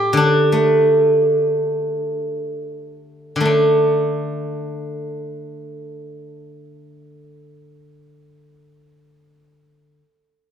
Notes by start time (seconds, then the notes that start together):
Already playing: A2 F4 G4
0.13 D3
0.17 D4
0.52 A3
3.36 D3
3.41 A3
3.45 D4